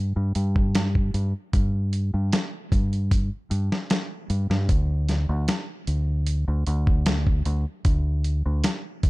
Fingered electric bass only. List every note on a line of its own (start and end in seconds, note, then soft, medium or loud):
0.00 0.12 G2 medium
0.16 0.33 G2 loud
0.36 1.11 G2 loud
1.14 1.32 G2 medium
1.54 2.10 G2 medium
2.14 2.30 G2 loud
2.72 3.28 G2 medium
3.51 3.69 G2 loud
4.30 4.48 G2 medium
4.50 4.67 G2 loud
4.69 5.25 D2 medium
5.29 5.46 D2 loud
5.87 6.44 D2 medium
6.48 6.64 D2 loud
6.67 7.42 D2 loud
7.46 7.64 D2 medium
7.85 8.41 D2 medium
8.46 8.62 D2 medium
9.04 9.10 D2 medium